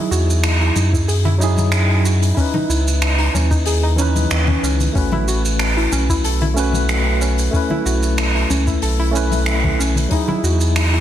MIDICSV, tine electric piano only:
0, 0, Header, 1, 2, 480
1, 0, Start_track
1, 0, Key_signature, 4, "major"
1, 0, Tempo, 645161
1, 1764, Time_signature, 4, 2, 24, 8
1, 8186, End_track
2, 0, Start_track
2, 0, Title_t, "Tine electric piano"
2, 0, Program_c, 0, 4
2, 0, Note_on_c, 0, 54, 77
2, 0, Note_on_c, 0, 63, 70
2, 0, Note_on_c, 0, 64, 65
2, 0, Note_on_c, 0, 68, 87
2, 4, Control_c, 0, 64, 127
2, 1008, Note_off_c, 0, 54, 0
2, 1015, Note_off_c, 0, 63, 0
2, 1022, Note_off_c, 0, 64, 0
2, 1026, Note_on_c, 0, 54, 87
2, 1029, Note_off_c, 0, 68, 0
2, 1040, Note_on_c, 0, 63, 76
2, 1053, Note_on_c, 0, 64, 76
2, 1068, Note_on_c, 0, 68, 93
2, 1728, Note_off_c, 0, 54, 0
2, 1735, Note_off_c, 0, 63, 0
2, 1737, Note_off_c, 0, 64, 0
2, 1746, Note_on_c, 0, 64, 70
2, 1749, Note_off_c, 0, 68, 0
2, 1761, Note_on_c, 0, 61, 67
2, 1774, Control_c, 0, 64, 0
2, 1775, Note_on_c, 0, 63, 69
2, 1789, Note_on_c, 0, 71, 85
2, 1890, Control_c, 0, 64, 127
2, 2928, Note_off_c, 0, 64, 0
2, 2936, Note_off_c, 0, 61, 0
2, 2942, Note_off_c, 0, 63, 0
2, 2945, Note_on_c, 0, 52, 85
2, 2950, Note_off_c, 0, 71, 0
2, 2958, Note_on_c, 0, 61, 73
2, 2971, Note_on_c, 0, 63, 72
2, 2987, Note_on_c, 0, 71, 87
2, 3648, Note_off_c, 0, 52, 0
2, 3654, Note_off_c, 0, 61, 0
2, 3661, Note_off_c, 0, 63, 0
2, 3665, Note_on_c, 0, 57, 73
2, 3669, Note_off_c, 0, 71, 0
2, 3678, Note_on_c, 0, 61, 67
2, 3692, Note_on_c, 0, 66, 70
2, 3695, Control_c, 0, 64, 0
2, 3704, Note_on_c, 0, 71, 79
2, 3824, Control_c, 0, 64, 127
2, 4848, Note_off_c, 0, 57, 0
2, 4854, Note_off_c, 0, 61, 0
2, 4861, Note_off_c, 0, 66, 0
2, 4866, Note_on_c, 0, 57, 84
2, 4867, Note_off_c, 0, 71, 0
2, 4879, Note_on_c, 0, 61, 77
2, 4892, Note_on_c, 0, 66, 76
2, 4905, Note_on_c, 0, 71, 96
2, 5568, Note_off_c, 0, 57, 0
2, 5575, Note_off_c, 0, 61, 0
2, 5581, Note_off_c, 0, 66, 0
2, 5585, Note_on_c, 0, 57, 76
2, 5588, Note_off_c, 0, 71, 0
2, 5600, Note_on_c, 0, 61, 70
2, 5612, Note_on_c, 0, 64, 71
2, 5614, Control_c, 0, 64, 0
2, 5626, Note_on_c, 0, 71, 85
2, 5748, Control_c, 0, 64, 127
2, 6768, Note_off_c, 0, 57, 0
2, 6775, Note_off_c, 0, 61, 0
2, 6778, Note_on_c, 0, 57, 83
2, 6781, Note_off_c, 0, 64, 0
2, 6788, Note_off_c, 0, 71, 0
2, 6792, Note_on_c, 0, 61, 77
2, 6804, Note_on_c, 0, 64, 77
2, 6820, Note_on_c, 0, 71, 95
2, 7484, Note_off_c, 0, 57, 0
2, 7491, Note_off_c, 0, 61, 0
2, 7497, Note_off_c, 0, 64, 0
2, 7504, Note_on_c, 0, 54, 75
2, 7505, Note_off_c, 0, 71, 0
2, 7520, Note_on_c, 0, 63, 73
2, 7531, Note_on_c, 0, 64, 71
2, 7535, Control_c, 0, 64, 0
2, 7544, Note_on_c, 0, 68, 85
2, 7665, Control_c, 0, 64, 127
2, 8186, Note_off_c, 0, 54, 0
2, 8186, Note_off_c, 0, 63, 0
2, 8186, Note_off_c, 0, 64, 0
2, 8186, Note_off_c, 0, 68, 0
2, 8186, End_track
0, 0, End_of_file